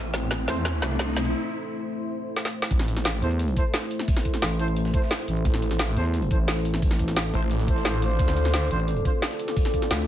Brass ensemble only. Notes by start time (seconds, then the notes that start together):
0.48 E4 A4 C5
3.22 E4 A4 C5
3.57 E4 A4 C5
4.59 E4 A4 C5
4.94 E4 A4 C5
5.97 E4 A4 C5
6.31 E4 A4 C5
7.34 E4 A4 C5
7.68 E4 A4 C5
8.02 D4 F4 C5
8.71 D4 F4 C5
9.05 D4 F4 C5